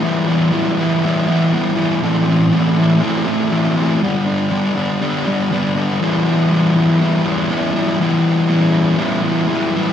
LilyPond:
\new Staff \with { instrumentName = "Distorted electric guitar" } { \time 4/4 \key e \minor \tempo 4 = 121 <e g b e'>8 <g b e'>8 <e g b e'>8 <g b e'>8 <e g b e'>8 <e g b e'>8 <e g b e'>8 <g b e'>8 | <a, e a c' e'>8 <a c' e'>8 <a, e a c' e'>8 <a c' e'>8 <e a c' e'>8 <a, e a c' e'>8 <e a c' e'>8 <a c' e'>8 | <g, d g b d'>8 <g b d'>8 <g, d g b d'>8 <g b d'>8 <d g b d'>8 <g, d g b d'>8 <d g b d'>8 <g b d'>8 | <e g b e'>8 <g b e'>8 <e g b e'>8 <g b e'>8 <e g b e'>8 <e g b e'>8 <e g b e'>8 <g b e'>8 |
<e g b e'>4 <e g b e'>4 <e g b e'>8 <g b e'>8 <e g b e'>8 <g b e'>8 | }